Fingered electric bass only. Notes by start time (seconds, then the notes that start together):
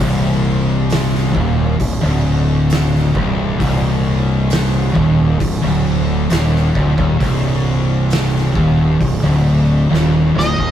0.00 C1
1.35 D#1
1.80 C1
2.03 D1
3.15 C1
3.60 C1
4.95 D#1
5.40 C1
5.63 D1
6.31 D#1
6.76 D1
6.98 D#1
7.21 C1
8.56 D#1
9.01 C1
9.23 D1
9.90 D#1
10.35 D1
10.59 D#1